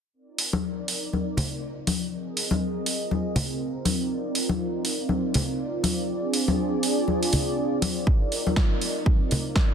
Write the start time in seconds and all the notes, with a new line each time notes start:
0.13 C4 D#4 F4 A#4 D5
0.38 open hi-hat
0.53 high conga
0.88 open hi-hat
1.13 high conga
1.37 open hi-hat, low conga
1.87 open hi-hat, high conga
2.12 G#4 A#4 D#5
2.37 open hi-hat
2.51 high conga
2.86 open hi-hat
3.11 high conga
3.36 open hi-hat, low conga
3.85 D#4 D5, open hi-hat, high conga
4.35 open hi-hat
4.49 high conga
4.85 open hi-hat
5.09 high conga
5.34 open hi-hat, low conga
5.84 open hi-hat, high conga
6.09 D4 G#4
6.34 open hi-hat
6.48 high conga
6.83 open hi-hat
7.08 high conga
7.23 open hi-hat
7.33 open hi-hat, low conga
7.82 open hi-hat, high conga
8.07 D#4 A#4, kick
8.32 open hi-hat
8.47 high conga
8.56 kick, snare
8.81 open hi-hat
9.06 kick, high conga
9.31 open hi-hat, low conga
9.56 kick, snare